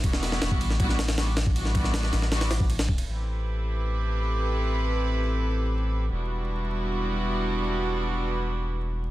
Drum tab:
RD |x-x-x-x-x-xxx-x-|x-x-x-x-xxx-xx-x|----------------|----------------|
SD |-oooo--o-oooo-o-|-o-oooooooo--o--|----------------|----------------|
BD |o----o--o------o|--o--------o--o-|----------------|----------------|

RD |----------------|----------------|
SD |----------------|----------------|
BD |----------------|----------------|